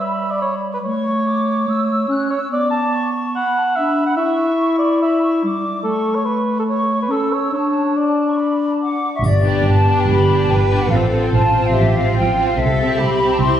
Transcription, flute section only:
0.00 0.61 B5 soft
0.86 1.26 C#6 soft
1.26 1.68 D6 soft
1.68 2.10 E6 soft
2.10 2.31 F#6 soft
2.31 2.52 E6 soft
2.52 2.93 D6 soft
2.94 3.35 C#6 soft
3.35 3.56 B5 medium
3.56 3.62 A5 soft
3.77 4.17 B5 soft
4.18 5.01 C#6 soft
5.01 5.22 B5 soft
5.22 5.43 C#6 soft
5.45 5.85 D6 soft
5.87 6.42 C#6 soft
6.69 7.10 C#6 soft
7.12 7.54 E6 soft
7.54 7.92 A5 soft
7.97 8.26 A5 soft
8.29 8.39 C#6 soft
8.39 8.70 B5 soft
8.71 8.81 A5 soft
8.82 9.11 F#5 soft
8.82 9.13 D6 soft
9.15 9.24 E5 soft
9.15 9.24 C#6 soft
9.25 9.66 D5 medium
9.68 9.97 A5 medium
9.99 10.08 G5 soft
10.07 10.38 B5 medium
10.41 10.50 A5 medium
10.50 10.81 G5 medium
10.81 10.91 F#5 soft
10.90 10.98 F5 medium
11.23 11.28 G5 soft
11.33 11.63 A5 medium
11.65 11.75 F5 medium
11.73 11.95 E5 medium
11.95 12.16 F5 medium
12.16 12.47 G5 medium
12.47 12.58 F5 soft
12.59 13.00 E5 medium
12.99 13.30 B5 medium
13.31 13.41 A5 soft
13.39 13.60 C6 medium

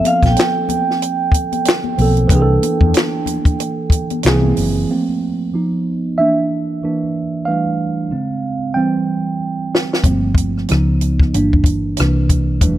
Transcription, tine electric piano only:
0.00 1.92 F3 medium
0.00 1.94 A#3 medium
0.00 1.95 C4 medium
0.00 1.96 A4 medium
1.97 2.30 F3 medium
1.97 2.29 A#3 medium
1.97 2.31 C4 medium
2.02 2.32 A4 medium
2.27 4.18 E3 medium
2.27 4.20 A#3 medium
2.32 4.21 D4 medium
2.32 2.40 G#4 medium
2.42 4.26 A4 medium
4.24 4.31 D#3 medium
4.24 4.89 A#3 medium
4.24 4.89 C4 medium
4.24 4.90 G#4 medium
4.30 4.91 E3 medium
4.89 5.50 F3 soft
4.89 5.50 A3 soft
4.89 5.51 A#3 soft
4.89 5.51 C4 soft
5.54 6.14 F3 soft
5.54 6.15 B3 soft
5.54 6.15 D#4 soft
6.18 6.79 E3 soft
6.18 6.80 A#3 soft
6.18 6.80 D4 soft
6.18 7.50 E5 medium
6.83 7.44 E3 soft
6.83 7.44 A#3 soft
6.83 7.45 D4 medium
7.45 8.08 E3 soft
7.45 8.08 G3 soft
7.45 8.08 A3 soft
7.45 8.09 D4 soft
7.45 8.79 F5 medium
8.11 8.56 C#3 soft
8.11 8.56 G#3 soft
8.11 8.56 C4 soft
8.74 10.00 E3 soft
8.74 10.01 G3 soft
8.74 10.01 C4 medium
8.74 9.67 G5 medium
10.05 10.66 F3 soft
10.05 10.66 A3 soft
10.05 10.66 A#3 soft
10.05 10.67 C4 soft
10.69 11.30 F3 soft
10.69 11.31 B3 soft
10.69 11.31 D#4 soft
11.34 11.95 E3 soft
11.34 11.95 A#3 soft
11.34 11.96 D4 medium
11.98 12.59 E3 soft
11.98 12.60 A#3 soft
11.98 12.60 D4 soft
12.62 12.78 E3 soft
12.62 12.78 G3 soft
12.62 12.78 A3 soft
12.62 12.78 D4 medium

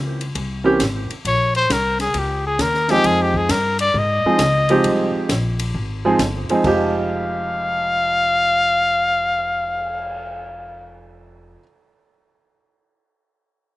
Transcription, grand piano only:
0.64 0.79 E3 medium
0.64 0.79 A#3 medium
0.64 0.79 C4 medium
0.64 0.79 C#4 medium
0.64 0.79 G4 medium
2.90 3.47 F3 medium
2.90 3.47 G#3 medium
2.90 3.47 C4 medium
2.90 3.47 D#4 medium
2.90 3.47 G#4 medium
4.26 4.39 F3 medium
4.26 4.39 G#3 medium
4.26 4.39 C4 medium
4.26 4.39 D#4 medium
4.26 4.39 G#4 medium
4.70 5.27 F3 medium
4.70 5.27 G#3 medium
4.70 5.27 C4 medium
4.70 5.27 D#4 medium
4.70 5.27 G4 medium
6.05 6.18 F3 medium
6.05 6.18 G#3 medium
6.05 6.19 C4 medium
6.05 6.19 D#4 medium
6.05 6.19 G#4 medium
6.50 6.63 F3 medium
6.50 6.64 G#3 medium
6.50 6.65 C4 medium
6.50 6.64 D#4 medium
6.50 6.65 G#4 medium
6.64 11.58 F2 medium
6.64 11.58 F3 medium
6.64 11.59 G#3 medium
6.64 11.60 D#4 medium
6.64 11.61 G4 medium

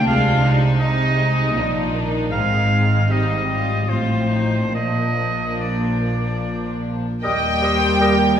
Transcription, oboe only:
0.07 0.53 F5 medium
0.80 1.89 D#5 medium
2.32 3.13 F5 medium
3.11 3.91 D#5 medium
3.89 4.73 C5 soft
4.75 5.63 D#5 medium
5.61 6.86 D5 soft
7.25 8.35 G5 medium

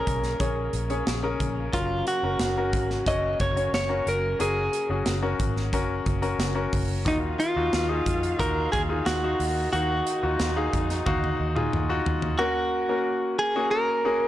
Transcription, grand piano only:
0.00 1.76 A#2 medium
0.00 0.40 C#4 medium
0.00 0.40 G#4 medium
0.00 1.24 A#4 medium
0.00 0.40 C#5 medium
0.40 0.79 C#4 medium
0.40 0.79 G#4 medium
0.40 0.79 C#5 medium
0.90 1.16 C#4 medium
0.90 1.16 G#4 medium
0.90 1.16 C#5 medium
1.23 1.62 C#4 medium
1.23 1.62 G#4 medium
1.23 1.62 A#4 medium
1.73 2.12 F#3 medium
1.73 2.12 C#4 medium
1.73 2.12 A#4 medium
2.24 2.49 C#4 medium
2.24 2.49 F#4 medium
2.24 2.49 A#4 medium
2.57 2.96 C#4 medium
2.57 2.96 F#4 medium
2.57 2.96 A#4 medium
3.07 3.45 C#4 medium
3.07 3.46 F#4 medium
3.07 3.46 C#5 medium
3.56 3.82 C#4 medium
3.56 3.82 F#4 medium
3.56 3.83 C#5 medium
3.89 4.28 C#4 medium
3.89 4.28 F#4 medium
3.89 4.28 A#4 medium
4.39 4.78 C#4 medium
4.39 4.78 F#4 medium
4.39 4.79 A#4 medium
4.90 5.16 C#4 medium
4.90 5.16 F#4 medium
4.90 5.16 G#4 medium
5.22 5.62 C#4 medium
5.22 5.61 F#4 medium
5.22 5.62 A#4 medium
5.73 6.12 C#4 medium
5.73 6.12 F#4 medium
5.73 6.12 A#4 medium
6.22 6.48 C#4 medium
6.22 6.48 F#4 medium
6.22 6.48 A#4 medium
6.55 6.94 C#4 medium
6.55 6.94 F#4 medium
6.55 6.95 A#4 medium
7.05 8.02 D#3 medium
7.05 7.44 D#4 medium
7.05 7.44 F4 medium
7.05 7.45 F#4 medium
7.56 7.82 D#4 medium
7.56 7.82 F4 medium
7.56 7.82 F#4 medium
7.89 8.28 D#4 medium
7.89 8.28 F4 medium
7.89 8.28 G#4 medium
8.38 8.78 D#4 medium
8.38 8.78 F4 medium
8.38 8.78 F#4 medium
8.89 9.15 D#4 medium
8.89 9.15 F4 medium
8.89 9.15 G#4 medium
9.24 9.62 D#4 medium
9.24 9.62 F#4 medium
9.24 9.62 F5 medium
9.74 10.69 D#3 medium
9.74 10.12 D#4 medium
9.74 10.12 F#4 medium
9.74 10.12 F5 medium
10.23 10.49 D#4 medium
10.23 10.49 F4 medium
10.23 10.49 F#4 medium
10.56 10.95 D#4 medium
10.56 10.95 G#4 medium
10.56 10.95 F5 medium
11.06 11.45 D#4 medium
11.06 11.45 F#4 loud
11.06 11.45 F5 medium
11.55 11.82 D#4 medium
11.55 11.81 F4 medium
11.55 11.82 G#4 medium
11.89 12.28 D#4 medium
11.89 12.28 F4 medium
11.89 12.28 F#4 medium
12.39 12.78 A#3 medium
12.39 12.78 C#4 medium
12.39 12.77 F#4 medium
12.39 12.78 A#4 medium
12.89 13.41 A#3 medium
12.89 13.40 C#4 medium
12.89 13.41 F#4 medium
12.89 13.41 A#4 medium
13.56 13.94 A#3 medium
13.56 13.94 C#4 medium
13.56 13.94 F#4 medium
13.56 13.94 G#4 medium
14.05 14.28 A#3 medium
14.05 14.28 C#4 medium
14.05 14.28 F#4 medium
14.05 14.28 G#4 medium

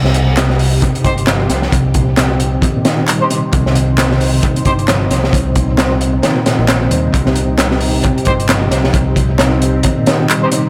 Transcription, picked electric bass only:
0.00 0.77 C2 loud
1.05 1.45 G1 medium
1.50 1.66 C2 medium
1.72 2.58 C2 loud
3.53 4.38 C2 loud
4.66 5.06 G1 loud
5.11 5.27 C2 medium
5.33 6.18 C2 loud
6.59 6.86 A#1 medium
6.91 7.07 D#2 medium
7.14 7.99 C2 loud
8.27 8.67 G1 medium
8.71 8.88 C2 medium
8.94 9.79 C2 loud

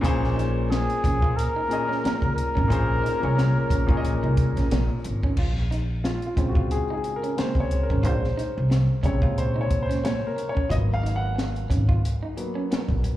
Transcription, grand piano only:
0.00 1.68 A#2 loud
0.00 0.02 A#3 medium
0.00 1.13 A#3 medium
0.00 0.03 C#4 medium
0.00 1.13 C#4 medium
0.00 0.05 G#4 medium
0.00 0.05 C5 medium
0.05 1.14 G#4 loud
0.05 1.14 C5 loud
1.68 2.53 A#2 medium
1.68 2.53 A#3 medium
1.68 2.54 C#4 medium
1.68 2.54 G#4 medium
1.73 2.55 D#5 medium
2.68 3.11 A#2 medium
2.68 3.11 A#3 medium
2.68 3.12 C#4 medium
2.68 3.12 G#4 medium
2.72 3.13 C5 medium
3.20 3.74 A#2 medium
3.20 3.75 A#3 medium
3.20 3.75 C#4 medium
3.20 3.76 G#4 medium
3.25 3.76 C#5 medium
3.87 4.95 A#2 medium
3.87 4.96 A#3 medium
3.87 4.96 C#4 medium
3.87 4.97 G#4 medium
3.91 3.96 C#5 medium
3.97 5.01 D#5 medium
6.04 6.24 F4 medium
6.26 6.47 F4 medium
6.36 6.82 C#3 medium
6.36 6.83 G#3 soft
6.36 6.83 C4 medium
6.48 6.69 F#4 medium
6.71 6.92 G#4 medium
6.93 7.14 G#4 medium
7.16 7.38 A#4 medium
7.36 7.67 C#3 soft
7.36 7.67 G#3 soft
7.36 7.67 C4 medium
7.36 7.58 C5 medium
7.60 7.80 C#5 medium
7.83 8.05 A#4 medium
8.05 9.00 C5 medium
9.03 10.00 C3 medium
9.03 9.99 C#3 medium
9.03 10.00 G#3 soft
9.03 9.39 C#5 medium
9.38 9.58 C5 medium
9.61 9.83 C#5 medium
9.83 10.03 C5 medium
10.05 10.25 C#5 medium
10.27 10.47 A#4 medium
10.49 10.72 C#5 medium
10.70 11.16 F#3 soft
10.70 11.16 A#3 soft
10.70 11.16 B3 medium
10.70 10.76 D#5 medium
10.93 11.14 F5 loud
11.16 11.78 F#5 medium
12.37 12.67 F#3 soft
12.37 12.67 A#3 soft
12.37 12.67 B3 medium

